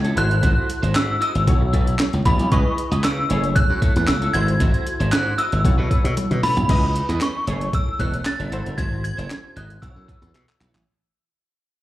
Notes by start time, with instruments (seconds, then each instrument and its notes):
Already playing: slap bass C#2, analog polysynth E4 G#4 A4 C#5, synth bell G#6
0.04 clean electric guitar A3 E4 A4, closed hi-hat
0.16 slap bass G#1, analog polysynth E4 F#4 A4 C5, clean electric guitar E4 F#4 C5, synth bell F#6, closed hi-hat
0.31 muted clean electric guitar stroke, closed hi-hat
0.43 slap bass G#1, clean electric guitar E4 F#4 C5, kick, closed hi-hat
0.69 muted clean electric guitar stroke, closed hi-hat
0.82 slap bass G#1, clean electric guitar E4 F#4 C5, closed hi-hat
0.95 slap bass G#2, synth bell E6, muted clean electric guitar stroke, snare, clap, closed hi-hat
1.09 muted clean electric guitar stroke
1.21 clean electric guitar E4 F#4 D#5, synth bell E6, closed hi-hat
1.35 slap bass G#1, muted clean electric guitar stroke, closed hi-hat
1.47 slap bass B1, analog polysynth E4 F#4 A4 C#5, muted clean electric guitar stroke, kick, closed hi-hat
1.61 muted clean electric guitar stroke
1.73 slap bass B1, clean electric guitar E4 A4 B4, kick, closed hi-hat
1.87 muted clean electric guitar stroke, closed hi-hat
1.99 muted clean electric guitar stroke, snare, clap, closed hi-hat
2.13 slap bass C#2, muted clean electric guitar stroke, closed hi-hat
2.25 slap bass A1, clean electric guitar E4 A4 B4, synth bell B5, kick, closed hi-hat
2.39 slap bass B1, muted clean electric guitar stroke, closed hi-hat
2.51 slap bass C#2, analog polysynth E4 G#4 B4 D#5, clean electric guitar E4 B4 D#5, synth bell C#6, kick, closed hi-hat
2.78 muted clean electric guitar stroke, closed hi-hat
2.91 slap bass C#2, clean electric guitar E4 B4 D#5, closed hi-hat
3.04 slap bass C#3, synth bell E6, muted clean electric guitar stroke, snare, clap, closed hi-hat
3.18 muted clean electric guitar stroke
3.29 slap bass F#1, clean electric guitar A3 E4 G#4, analog polysynth E4 G#4 A4 C#5, closed hi-hat
3.44 muted clean electric guitar stroke, closed hi-hat
3.56 synth bell F#6, muted clean electric guitar stroke, kick, closed hi-hat
3.70 slap bass F#2, muted clean electric guitar stroke
3.82 clean electric guitar A3 E4 A4, kick, closed hi-hat
3.96 slap bass E2, muted clean electric guitar stroke, closed hi-hat
4.07 slap bass C#2, synth bell E6, muted clean electric guitar stroke, snare, clap, closed hi-hat
4.22 clean electric guitar A3 E4 A4, closed hi-hat
4.34 slap bass G#1, analog polysynth E4 F#4 A4 C5, clean electric guitar E4 F#4 C5, synth bell G#6, closed hi-hat
4.48 muted clean electric guitar stroke, closed hi-hat
4.60 slap bass G#1, clean electric guitar E4 F#4 C5, kick, closed hi-hat
4.74 closed hi-hat
4.86 muted clean electric guitar stroke, closed hi-hat
5.00 slap bass G#1, clean electric guitar E4 F#4 C5, closed hi-hat
5.12 slap bass G#2, synth bell F#6, muted clean electric guitar stroke, snare, clap, closed hi-hat
5.26 muted clean electric guitar stroke
5.38 clean electric guitar E4 F#4 D#5, synth bell E6, closed hi-hat
5.52 slap bass G#1, muted clean electric guitar stroke, closed hi-hat
5.64 slap bass B1, analog polysynth E4 F#4 A4 C#5, muted clean electric guitar stroke, kick, closed hi-hat
5.78 slap bass B2, clean electric guitar E4 A4 B4
5.90 clean electric guitar E4 A4 B4, kick, closed hi-hat
6.04 slap bass B2, muted clean electric guitar stroke, closed hi-hat
6.17 muted clean electric guitar stroke, closed hi-hat, high tom
6.31 slap bass B2, muted clean electric guitar stroke, closed hi-hat, mid tom
6.43 clean electric guitar E4 A4 B4, synth bell B5, mid tom, open hi-hat
6.57 slap bass B1, muted clean electric guitar stroke, closed hi-hat, floor tom
6.69 slap bass C#2, clean electric guitar E4 B4 D#5, analog polysynth E4 G#4 B4 D#5, kick, closed hi-hat, crash
6.95 muted clean electric guitar stroke, closed hi-hat
7.09 slap bass E2, clean electric guitar E4 B4 D#5, closed hi-hat
7.21 synth bell C#6, snare, clap, closed hi-hat
7.35 muted clean electric guitar stroke
7.47 slap bass F#1, clean electric guitar A3 E4 G#4, analog polysynth E4 G#4 A4 C#5, closed hi-hat
7.61 muted clean electric guitar stroke, closed hi-hat
7.73 synth bell E6, muted clean electric guitar stroke, kick, closed hi-hat
7.88 muted clean electric guitar stroke
8.00 slap bass E1, clean electric guitar A3 E4 A4, synth bell F#6, kick, closed hi-hat
8.14 muted clean electric guitar stroke, closed hi-hat
8.25 synth bell A6, muted clean electric guitar stroke, snare, clap, closed hi-hat
8.39 slap bass F#1, clean electric guitar A3 E4 A4, closed hi-hat
8.52 slap bass G#1, analog polysynth E4 F#4 A4 C5, clean electric guitar E4 F#4 C5, closed hi-hat
8.65 slap bass F#1, muted clean electric guitar stroke, closed hi-hat
8.78 slap bass G#1, clean electric guitar E4 F#4 C5, synth bell G#6, kick, closed hi-hat
9.04 synth bell G#6, muted clean electric guitar stroke, closed hi-hat
9.17 slap bass F#1, clean electric guitar E4 F#4 C5, closed hi-hat
9.30 muted clean electric guitar stroke, snare, clap, closed hi-hat
9.44 muted clean electric guitar stroke
9.56 slap bass G#1, clean electric guitar E4 F#4 D#5, synth bell F#6, closed hi-hat
9.70 muted clean electric guitar stroke, closed hi-hat
9.82 slap bass B1, analog polysynth E4 F#4 A4 C5, synth bell E6, muted clean electric guitar stroke, kick, closed hi-hat
9.90 analog polysynth C#5
9.96 slap bass F#2, muted clean electric guitar stroke
10.08 clean electric guitar E4 A4 B4, kick, closed hi-hat
10.22 slap bass E2, muted clean electric guitar stroke, closed hi-hat
10.34 slap bass B2, muted clean electric guitar stroke, clap, closed hi-hat
10.48 muted clean electric guitar stroke, clap, closed hi-hat
10.60 slap bass B1, clean electric guitar E4 A4 B4, clap, closed hi-hat
10.74 slap bass A1, muted clean electric guitar stroke, clap, closed hi-hat